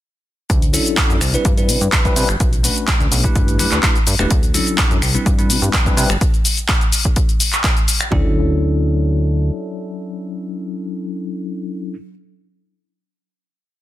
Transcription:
0.50 analog synth bass D2, kick, closed hi-hat, shaker
0.62 closed hi-hat, shaker
0.73 tine electric piano F#3 C#4 D4 E4 A4, open hi-hat, shaker
0.86 closed hi-hat, shaker
0.97 kick, clap, closed hi-hat, shaker
1.10 analog synth bass F#2, closed hi-hat, shaker
1.21 analog synth bass C2, finger snap, open hi-hat, shaker
1.34 tine electric piano G3 C4 D4 E4 B4, closed hi-hat, shaker
1.45 analog synth bass G2, kick, closed hi-hat, shaker
1.57 tine electric piano G3 C4 D4 E4 B4, closed hi-hat, shaker
1.69 analog synth bass C3, open hi-hat, shaker
1.81 analog synth bass G2, closed hi-hat, shaker
1.92 kick, clap, closed hi-hat, shaker
2.05 tine electric piano G3 C4 D4 E4 B4, kick, closed hi-hat, shaker
2.16 analog synth bass C3, tine electric piano G3 C4 D4 E4 B4, open hi-hat, shaker
2.29 analog synth bass G1, finger snap, shaker
2.40 analog synth bass B1, kick, closed hi-hat, shaker
2.53 closed hi-hat, shaker
2.63 tine electric piano A3 C#4 D4 F#4 B4, open hi-hat, shaker
2.76 closed hi-hat, shaker
2.88 kick, clap, closed hi-hat, shaker
3.00 analog synth bass D2, closed hi-hat, shaker
3.12 analog synth bass B1, open hi-hat, shaker
3.24 tine electric piano A3 D4 E4 G4 B4, kick, shaker
3.36 analog synth bass G1, kick, closed hi-hat, shaker
3.48 closed hi-hat, shaker
3.59 analog synth bass G2, tine electric piano A3 D4 E4 G4 B4, open hi-hat, shaker
3.72 analog synth bass D2, clap, closed hi-hat, shaker
3.83 tine electric piano D4 E4 G4 B4, kick, clap, closed hi-hat, shaker
3.96 closed hi-hat, shaker
4.07 analog synth bass G2, open hi-hat, shaker
4.19 analog synth bass E1, tine electric piano A3 D4 E4 G4 B4, finger snap, shaker
4.31 analog synth bass D2, kick, closed hi-hat, shaker
4.43 closed hi-hat, shaker
4.54 tine electric piano F#3 C#4 D4 E4 A4, open hi-hat, shaker
4.67 closed hi-hat, shaker
4.78 kick, clap, closed hi-hat, shaker
4.91 analog synth bass F#2, closed hi-hat, shaker
5.02 analog synth bass C2, finger snap, open hi-hat, shaker
5.14 tine electric piano G3 C4 D4 E4 B4, closed hi-hat, shaker
5.26 analog synth bass G2, kick, closed hi-hat, shaker
5.38 tine electric piano G3 C4 D4 E4 B4, closed hi-hat, shaker
5.50 analog synth bass C3, open hi-hat, shaker
5.62 analog synth bass G2, closed hi-hat, shaker
5.73 kick, clap, closed hi-hat, shaker
5.86 tine electric piano G3 C4 D4 E4 B4, kick, closed hi-hat, shaker
5.97 analog synth bass C3, tine electric piano G3 C4 D4 E4 B4, open hi-hat, shaker
6.10 analog synth bass G1, finger snap, closed hi-hat, shaker
6.21 kick, closed hi-hat, shaker
6.34 closed hi-hat, shaker
6.45 open hi-hat, shaker
6.57 closed hi-hat, shaker
6.69 kick, clap, closed hi-hat, shaker
6.81 closed hi-hat, shaker
6.92 open hi-hat, shaker
7.05 kick, closed hi-hat, shaker
7.16 kick, closed hi-hat, shaker
7.29 closed hi-hat, shaker
7.40 open hi-hat, shaker
7.53 clap, closed hi-hat, shaker
7.64 kick, clap, closed hi-hat, shaker
7.77 closed hi-hat, shaker
7.88 open hi-hat, shaker
8.01 finger snap, closed hi-hat, shaker
8.11 analog synth bass D2, tine electric piano F#3 C#4 D4 E4 A4, kick, floor tom

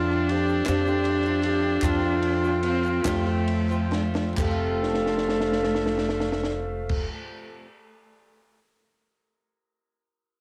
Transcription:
Already playing: upright bass F2, steel-string acoustic guitar F3 A3 C4, cello D4, bansuri F4, brass ensemble F4 A4 C5 A5
0.11 steel-string acoustic guitar F3 A3 C4 F4
0.29 steel-string acoustic guitar F3 A3 C4 F4, bansuri G4, ride
0.49 shaker
0.66 steel-string acoustic guitar F2 C3 F3 A3 C4 F4, upright bass F2, bansuri G4, snare, clap, ride, shaker
0.87 steel-string acoustic guitar F3 A3 C4 F4, shaker
1.05 clap, ride
1.24 steel-string acoustic guitar F3 A3 C4 F4, clap, shaker
1.43 steel-string acoustic guitar F3 A3 C4 F4, bansuri G4, clap, ride
1.82 steel-string acoustic guitar F2 C3 F3 A3 C4 F4, upright bass F2, bansuri F4, brass ensemble G5, kick, clap, ride, shaker
2.03 steel-string acoustic guitar F3 A3 C4 F4
2.23 ride
2.44 steel-string acoustic guitar F3 A3 C4 F4, shaker
2.63 steel-string acoustic guitar F3 A3 C4 F4, cello C4, clap, ride
2.84 clap, shaker
3.05 upright bass F2, steel-string acoustic guitar F2 C3 F3 A3 C4 F4, cello A3, kick, snare, clap, ride, shaker
3.26 steel-string acoustic guitar F3 A3 C4 F4
3.48 ride
3.69 steel-string acoustic guitar F3 A3 C4 F4, clap, shaker
3.92 steel-string acoustic guitar F3 A3 C4 F4, cello A3, snare, clap
4.15 snare, clap
4.33 steel-string acoustic guitar F2, brass ensemble A3 F4 C5 F5, cello A3
4.37 upright bass F1, steel-string acoustic guitar C3, bansuri A4, kick, clap, crash, shaker
4.41 steel-string acoustic guitar F3 A3
4.47 steel-string acoustic guitar C4 F4
4.83 snare
4.94 snare
5.06 snare
5.18 snare
5.29 snare
5.41 snare
5.52 snare
5.63 snare
5.75 snare
5.86 snare
5.98 snare
6.09 snare
6.20 snare
6.32 snare
6.43 snare
6.89 kick, crash

